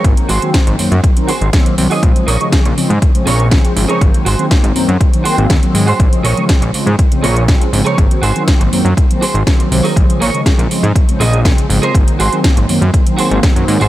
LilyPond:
<<
  \new Staff \with { instrumentName = "Clean electric guitar" } { \time 4/4 \key aes \mixolydian \tempo 4 = 121 r8 <ges' aes' c''>8 r4. <ges' aes' c''>8 r8. <ges' aes' ees''>16 | r8 <aes' bes' des''>8 r4. <aes' bes' des''>8 r8. <aes' bes' des''>16 | r8 <ges' aes' c''>8 r4. <ges' aes' c''>8 r8. <ges' aes' c''>16 | r8 <aes' bes' des''>8 r4. <aes' bes' des''>8 r8. <aes' bes' des''>16 |
r8 <ges' aes' c''>8 r4. <ges' aes' c''>8 r8. <ges' aes' bes'>16 | r8 <aes' bes' des''>8 r4. <aes' bes' ees''>8 r8. <aes' bes' c''>16 | r8 <ges' aes' c''>8 r4. <ges' aes' c''>8 r8. <ges' aes' c''>16 | }
  \new Staff \with { instrumentName = "Analog polysynth" } { \clef bass \time 4/4 \key aes \mixolydian <ees ges bes c'>8 r16 <ees ges bes c'>8. <ees ges bes c'>16 r8 <ees ges bes c'>16 r8 <ees ges bes c'>8 <ees ges bes c'>8 | <des f aes c'>8 r16 <des f aes>8. <des f aes c'>16 r8 <des f aes c'>16 r8 <des f aes c'>8 <des f aes c'>8 | <ees c'>8 r16 <ees ges bes c'>8. <ees ges bes c'>16 r8 <ees ges bes c'>16 <ees ges bes c'>16 <ees ges bes c'>8 <ees ges bes c'>8 r16 | <des f aes c'>8 r16 <des f aes>8. <des f aes c'>16 r8 <des f aes c'>16 r8 <des f aes c'>8 <des f aes c'>8 |
<ees ges c'>8 r16 <ees ges bes c'>8. <ees ges bes c'>16 r8 <ees ges bes c'>16 r8 <ees ges bes c'>8 <ees ges bes c'>8 | <des f aes>8 r16 <des f aes>8. <des f aes c'>16 r8 <des f aes c'>16 r8 <des f aes c'>8 <des f aes c'>8 | ges8 r16 <ees ges bes c'>8. <ees ges bes c'>16 r8 <ees ges bes c'>16 <ees ges bes c'>16 <ees ges bes c'>8 <ees ges bes c'>8 r16 | }
  \new Staff \with { instrumentName = "Analog synth bass" } { \clef bass \time 4/4 \key aes \mixolydian aes,,16 r16 aes,,16 r8 aes,,16 ges,16 ges,16 r8. aes,,16 r8 c,16 r16 | bes,,16 r16 bes,,16 r8 bes,,16 r16 aes,16 r8 bes,,8. r16 aes,,16 r16 | aes,,16 r16 aes,,16 r8 aes,,16 ges,16 ges,16 r8. aes,,16 ees,16 r16 aes,16 r16 | bes,,16 r16 bes,,16 r8 bes,,16 r16 aes,16 r8 bes,,8. r16 aes,,16 r16 |
aes,,16 r16 aes,,16 r8 aes,,16 ges,16 ges,16 r8. aes,,16 r8 c,16 r16 | bes,,16 r16 bes,,16 r8 bes,,16 r16 aes,16 r8 bes,,8. r16 aes,,16 r16 | aes,,16 r16 aes,,16 r8 aes,,16 ges,16 ges,16 r8. aes,,16 r16 ges,16 aes,16 aes,,16 | }
  \new DrumStaff \with { instrumentName = "Drums" } \drummode { \time 4/4 <hh bd>16 hh16 hho16 hh16 <hh bd sn>16 hh16 hho16 hh16 <hh bd>16 hh16 hho16 hh16 <hh bd sn>16 hh16 hho16 hho16 | <hh bd>16 hh16 hho16 hh16 <hh bd sn>16 hh16 hho16 hh16 <hh bd>16 hh16 hho16 hh16 <hh bd sn>16 hh16 hho16 hh16 | <hh bd>16 hh16 hho16 hh16 <hh bd sn>16 hh16 hho16 hh16 <hh bd>16 hh16 hho16 hh16 <hh bd sn>16 hh16 hho16 hho16 | <hh bd>16 hh16 hho16 hh16 <hh bd sn>16 hh16 hho16 hh16 <hh bd>16 hh16 hho16 hh16 <hh bd sn>16 hh16 hho16 hh16 |
<hh bd>16 hh16 hho16 hh16 <hh bd sn>16 hh16 hho16 hh16 <hh bd>16 hh16 hho16 hh16 <hh bd sn>16 hh16 hho16 hho16 | <hh bd>16 hh16 hho16 hh16 <hh bd sn>16 hh16 hho16 hh16 <hh bd>16 hh16 hho16 hh16 <hh bd sn>16 hh16 hho16 hh16 | <hh bd>16 hh16 hho16 hh16 <hh bd sn>16 hh16 hho16 hh16 <hh bd>16 hh16 hho16 hh16 <hh bd sn>16 hh16 hho16 hho16 | }
>>